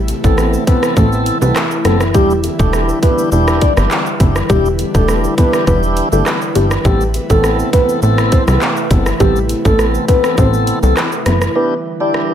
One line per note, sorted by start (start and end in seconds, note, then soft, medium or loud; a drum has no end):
0.00 0.13 A1 loud
0.00 2.10 C3 medium
0.00 6.81 E3 medium
0.00 2.10 A3 medium
0.00 6.81 E4 medium
0.08 closed hi-hat medium
0.08 high bongo medium
0.08 shaker medium
0.24 0.57 A1 loud
0.24 0.64 B3 medium
0.24 0.64 C4 medium
0.24 0.43 A4 medium
0.24 0.64 A4 medium
0.24 kick medium
0.24 shaker medium
0.37 cross-stick medium
0.37 high bongo medium
0.37 shaker medium
0.54 shaker medium
0.67 0.94 B3 medium
0.67 0.95 C4 medium
0.67 0.95 A4 medium
0.67 0.86 B4 medium
0.67 kick medium
0.67 closed hi-hat medium
0.67 high bongo medium
0.67 low bongo medium
0.67 shaker medium
0.83 cross-stick loud
0.83 shaker medium
0.96 1.31 A1 loud
0.96 1.38 B3 loud
0.96 1.38 C4 medium
0.96 1.07 A4 medium
0.96 1.38 A4 loud
0.96 kick loud
0.96 shaker medium
1.12 shaker medium
1.26 closed hi-hat medium
1.26 shaker medium
1.41 1.52 C2 medium
1.41 1.59 B3 medium
1.41 1.59 C4 medium
1.41 1.59 A4 medium
1.41 1.51 B4 medium
1.41 high bongo medium
1.41 shaker medium
1.56 cross-stick medium
1.56 clap medium
1.56 high bongo medium
1.56 shaker medium
1.71 shaker soft
1.85 2.16 F#1 medium
1.85 2.04 B3 medium
1.85 2.04 C4 medium
1.85 1.95 A4 medium
1.85 2.04 A4 medium
1.85 cross-stick medium
1.85 closed hi-hat medium
1.85 high bongo medium
1.85 low bongo medium
1.85 shaker medium
2.01 cross-stick medium
2.01 shaker medium
2.14 2.49 E1 loud
2.14 6.81 D3 medium
2.14 6.81 G3 medium
2.14 2.33 D4 medium
2.14 2.33 E4 medium
2.14 2.33 G4 loud
2.14 11.52 B4 medium
2.14 kick loud
2.14 shaker medium
2.30 shaker soft
2.44 closed hi-hat medium
2.44 high bongo medium
2.44 shaker medium
2.59 2.92 E1 loud
2.59 2.99 D4 medium
2.59 2.99 E4 medium
2.59 2.99 G4 medium
2.59 2.78 A4 medium
2.59 kick loud
2.59 shaker medium
2.73 cross-stick medium
2.73 high bongo medium
2.73 shaker medium
2.89 shaker medium
3.02 3.30 D4 medium
3.02 3.30 E4 medium
3.02 3.30 G4 medium
3.02 3.22 B4 medium
3.02 kick medium
3.02 closed hi-hat medium
3.02 high bongo medium
3.02 low bongo medium
3.02 shaker medium
3.18 shaker medium
3.32 3.66 E1 loud
3.32 3.73 D4 medium
3.32 3.73 E4 medium
3.32 3.74 G4 loud
3.32 shaker medium
3.48 cross-stick loud
3.48 shaker medium
3.61 3.72 D5 medium
3.61 kick loud
3.61 closed hi-hat medium
3.61 shaker medium
3.77 3.88 G1 medium
3.77 3.94 D4 medium
3.77 3.94 E4 medium
3.77 3.95 G4 medium
3.77 cross-stick loud
3.77 high bongo medium
3.77 shaker medium
3.91 clap medium
3.91 high bongo medium
3.91 shaker medium
4.06 shaker soft
4.20 4.43 F#1 loud
4.20 4.39 D4 medium
4.20 4.39 E4 medium
4.20 4.39 G4 medium
4.20 kick medium
4.20 closed hi-hat medium
4.20 high bongo medium
4.20 low bongo medium
4.20 shaker medium
4.36 cross-stick medium
4.36 shaker medium
4.49 4.84 E1 loud
4.49 4.68 D4 medium
4.49 4.68 E4 medium
4.49 4.69 G4 loud
4.49 kick loud
4.49 shaker medium
4.66 shaker medium
4.79 closed hi-hat medium
4.79 high bongo medium
4.79 shaker medium
4.94 5.28 E1 loud
4.94 5.34 D4 medium
4.94 5.35 E4 medium
4.94 5.35 G4 medium
4.94 5.14 A4 medium
4.94 kick loud
4.94 shaker medium
5.08 cross-stick medium
5.08 high bongo medium
5.08 shaker medium
5.24 shaker medium
5.38 5.65 D4 medium
5.38 5.65 E4 medium
5.38 5.65 G4 medium
5.38 5.57 B4 medium
5.38 kick medium
5.38 closed hi-hat medium
5.38 high bongo medium
5.38 low bongo medium
5.38 shaker medium
5.53 cross-stick loud
5.53 shaker medium
5.67 6.02 E1 loud
5.67 6.08 D4 medium
5.67 6.09 E4 medium
5.67 6.09 G4 loud
5.67 5.77 B4 loud
5.67 kick medium
5.67 shaker medium
5.83 shaker medium
5.97 closed hi-hat medium
5.97 shaker medium
6.12 6.23 G1 medium
6.12 6.30 D4 medium
6.12 6.30 E4 medium
6.12 6.30 G4 medium
6.12 6.21 A4 medium
6.12 high bongo medium
6.12 shaker medium
6.26 cross-stick medium
6.26 clap medium
6.26 high bongo medium
6.26 shaker medium
6.41 shaker soft
6.55 6.78 G1 medium
6.55 6.74 D4 medium
6.55 6.74 E4 medium
6.55 6.66 G4 medium
6.55 6.74 G4 medium
6.55 closed hi-hat medium
6.55 high bongo medium
6.55 low bongo medium
6.55 shaker medium
6.71 cross-stick loud
6.71 shaker medium
6.85 7.19 A1 loud
6.85 11.52 C3 medium
6.85 11.52 E3 medium
6.85 11.52 A3 medium
6.85 7.04 B3 medium
6.85 7.04 C4 medium
6.85 11.52 E4 medium
6.85 7.04 G4 loud
6.85 7.04 A4 loud
6.85 kick loud
6.85 shaker medium
7.01 shaker medium
7.14 closed hi-hat medium
7.14 high bongo medium
7.14 shaker medium
7.30 7.63 A1 loud
7.30 7.70 B3 medium
7.30 7.70 C4 medium
7.30 7.49 A4 medium
7.30 7.70 A4 medium
7.30 kick loud
7.30 shaker medium
7.43 cross-stick medium
7.43 high bongo medium
7.43 shaker medium
7.59 shaker medium
7.73 8.00 B3 medium
7.73 8.00 C4 medium
7.73 8.01 A4 medium
7.73 7.92 B4 medium
7.73 kick medium
7.73 closed hi-hat medium
7.73 high bongo medium
7.73 low bongo medium
7.73 shaker medium
7.89 shaker medium
8.02 8.37 A1 loud
8.02 8.44 B3 medium
8.02 8.44 C4 medium
8.02 8.44 A4 loud
8.02 shaker medium
8.18 cross-stick loud
8.18 shaker medium
8.32 8.42 C5 medium
8.32 kick loud
8.32 closed hi-hat medium
8.32 shaker medium
8.47 8.58 C2 medium
8.47 8.65 B3 medium
8.47 8.65 C4 medium
8.47 8.65 A4 medium
8.47 cross-stick loud
8.47 high bongo medium
8.47 shaker medium
8.61 clap medium
8.61 high bongo medium
8.61 shaker medium
8.77 shaker soft
8.91 9.13 G1 medium
8.91 9.10 B3 medium
8.91 9.10 C4 medium
8.91 9.10 A4 medium
8.91 kick medium
8.91 closed hi-hat medium
8.91 high bongo medium
8.91 low bongo medium
8.91 shaker medium
9.06 cross-stick medium
9.06 shaker medium
9.20 9.55 A1 loud
9.20 9.39 B3 loud
9.20 9.39 C4 medium
9.20 9.39 G4 loud
9.20 9.39 A4 loud
9.20 kick loud
9.20 shaker medium
9.36 shaker medium
9.49 closed hi-hat medium
9.49 high bongo medium
9.49 shaker medium
9.65 9.98 A1 loud
9.65 10.05 B3 medium
9.65 10.05 C4 medium
9.65 9.84 A4 medium
9.65 10.05 A4 medium
9.65 kick medium
9.65 shaker medium
9.79 cross-stick medium
9.79 high bongo medium
9.79 shaker medium
9.95 shaker medium
10.08 10.36 B3 medium
10.08 10.36 C4 medium
10.08 10.36 A4 medium
10.08 10.27 B4 medium
10.08 kick medium
10.08 closed hi-hat medium
10.08 high bongo medium
10.08 low bongo medium
10.08 shaker medium
10.24 cross-stick loud
10.24 shaker medium
10.38 10.72 A1 loud
10.38 10.79 B3 medium
10.38 10.79 C4 medium
10.38 10.79 A4 loud
10.38 10.48 C5 medium
10.38 kick loud
10.38 shaker medium
10.54 shaker medium
10.67 closed hi-hat medium
10.67 shaker medium
10.83 10.94 C2 medium
10.83 11.00 B3 medium
10.83 11.00 C4 medium
10.83 10.92 A4 medium
10.83 11.01 A4 medium
10.83 high bongo medium
10.83 shaker medium
10.97 cross-stick medium
10.97 clap medium
10.97 high bongo medium
10.97 shaker medium
11.12 shaker soft
11.26 11.49 F#1 medium
11.26 11.36 B4 medium
11.26 cross-stick medium
11.26 closed hi-hat medium
11.26 high bongo medium
11.26 low bongo medium
11.26 shaker medium
11.42 cross-stick medium
11.42 shaker medium
11.55 12.34 D3 medium
11.55 12.34 E3 medium
11.55 12.34 G3 medium
11.55 11.74 D4 medium
11.55 11.74 E4 medium
11.55 12.34 E4 medium
11.55 11.74 G4 medium
11.55 12.34 B4 medium
11.55 11.75 B4 medium
12.00 12.34 D4 medium
12.00 12.34 E4 medium
12.00 12.34 G4 medium
12.00 12.10 D5 medium
12.14 cross-stick medium